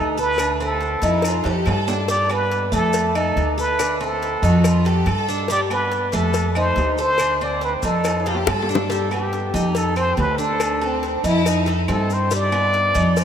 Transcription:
Already playing: D2 D#4 A4
0.18 A4 B4, maracas
0.38 D4, cowbell, low agogo, claves, maracas
0.60 C4 A4, low agogo, maracas
0.81 cowbell, maracas
1.02 F2 D#4 E4, cowbell, low agogo, maracas
1.22 F4, cowbell, high timbale, low agogo, claves, maracas
1.44 F2 G4 A4, cowbell, high timbale, low agogo, maracas
1.66 G2 A4, cowbell, low timbale, low agogo, claves, maracas
1.88 D4, low timbale, maracas
2.08 G3 D5, cowbell, maracas
2.30 B3 B4, low agogo, claves, maracas
2.52 cowbell, maracas
2.72 F2 A3 A4, cowbell, low agogo, maracas
2.93 cowbell, low agogo, maracas
3.15 D#4 A4, low agogo, claves, maracas
3.36 D2, cowbell, low agogo, maracas
3.58 A4 B4, maracas
3.79 D4, cowbell, low agogo, claves, maracas
4.01 C4 A4, low agogo, maracas
4.22 cowbell, maracas
4.42 F2 D#4 F#4, cowbell, low agogo, maracas
4.64 F4, cowbell, low agogo, claves, maracas
4.85 G4 A4, cowbell, low agogo, maracas
5.06 G2 A4, cowbell, low agogo, claves, maracas
5.29 D4, maracas
5.48 G3 D5, cowbell, maracas
5.70 B3 B4, low agogo, claves, maracas
5.92 cowbell, maracas
6.12 F2 A3 A4, cowbell, low agogo, maracas
6.34 cowbell, low agogo, maracas
6.55 D#4 C5, low agogo, claves, maracas
6.76 D2, cowbell, low timbale, low agogo, maracas
6.98 A4 C5, maracas
7.18 D4, cowbell, low agogo, claves, maracas
7.41 C4 D5, low agogo, maracas
7.61 B4, cowbell, maracas
7.83 F2 D#4 A4, cowbell, low agogo, maracas
8.04 cowbell, high timbale, low agogo, claves, maracas
8.20 high timbale
8.26 F4 A4, cowbell, low agogo, maracas
8.35 G4, low timbale
8.47 G2 A4, cowbell, high bongo, low timbale, low agogo, claves, maracas
8.62 low timbale
8.69 D4, maracas
8.75 low bongo, low timbale
8.90 G3 A4, cowbell, maracas
9.11 B3 G4, low agogo, claves, maracas
9.33 cowbell, maracas
9.54 F2 D#4, cowbell, low agogo, maracas
9.75 A4, cowbell, low agogo, maracas
9.96 C4 C5, low agogo, claves, maracas
10.17 D2 A4 B4, cowbell, low timbale, low agogo, maracas
10.38 D4 A4, maracas
10.60 cowbell, low agogo, claves, maracas
10.81 C4 A4, low agogo, maracas
11.03 cowbell, maracas
11.24 F2 D#4 E4, cowbell, low agogo, maracas
11.45 D#4, cowbell, low agogo, claves, maracas
11.66 A4, cowbell, low agogo, maracas
11.88 G2 C4 A4, cowbell, low timbale, low agogo, claves, maracas
12.10 C5, maracas
12.31 G3, cowbell, maracas
12.35 D5
12.52 B3, low agogo, claves, maracas
12.73 cowbell, maracas
12.95 F2 D#4, cowbell, low agogo, maracas
13.17 C5, cowbell, low agogo, maracas

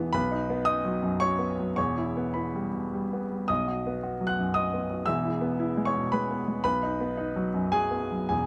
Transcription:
Already playing: E1 E2 B2 B3 E4 G#4 B4 G#5 B5
0.00 E3
0.13 B1 B4 B5
0.31 D#4
0.50 B3
0.65 D#4 D#5 D#6
0.85 F#3
1.03 F#2
1.20 F#3 C#5 C#6
1.39 B3
1.60 F#3
1.76 E1 E2 C#5 C#6
1.97 E4
2.17 B3
2.34 E4 B4 B5
2.55 G3
2.73 B2
2.93 G3
3.13 B3
3.32 G3
3.48 B1 D#5 D#6
3.68 F#4
3.87 B3
4.03 F#4
4.21 F#3
4.27 F#5 F#6
4.39 F#2
4.54 F#3 D#5 D#6
4.74 B3
4.90 F#3
5.06 E1 E2 E5 E6
5.24 E4
5.41 B3
5.60 E4
5.77 G#3
5.85 C#5 C#6
5.96 B2
6.12 G#3 B4 B5
6.31 B3
6.48 G#3
6.64 B1 B4 B5
6.83 D#4
7.00 B3
7.17 D#4
7.36 F#3
7.54 F#2
7.72 F#3 G#4 G#5
7.91 B3
8.12 F#3
8.29 E1 E2 G#4 G#5

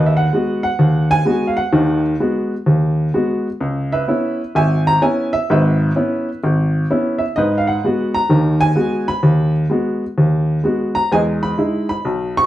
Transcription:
Already playing: D#2 B4
0.06 E5
0.17 F#5
0.33 G#3 B3 F#4
0.63 F#5
0.79 D#2
1.11 G#5
1.25 G#3 B3 F#4
1.47 F5
1.57 F#5
1.73 D#2 D#3
2.20 G#3 B3 F#4
2.66 D#2
3.14 G#3 B3 F#4
3.61 C#2
3.92 B4 E5
4.08 B3 C#4 E4
4.55 G#1 E5 G#5
4.87 A#5
5.02 B3 C#4 E4 G#5
5.33 E5
5.50 G#1 G#2 B4 E5
5.96 B3 C#4 E4
6.44 G#1
6.90 B3 C#4 E4
7.18 E5
7.36 G#2 B4 D#5
7.58 F5
7.67 F#5
7.84 G#3 B3 F#4
8.14 A#5
8.29 D#2 D#3
8.61 G#5
8.76 G#3 B3 F#4
9.08 B5
9.23 D#2
9.70 G#3 B3 F#4
10.18 D#2
10.64 G#3 B3 F#4
10.95 A#5
11.12 E2 G#3 D#5 G#5
11.43 B5
11.58 G#3 D#4 E4
11.89 B5
12.05 B1
12.37 C#6

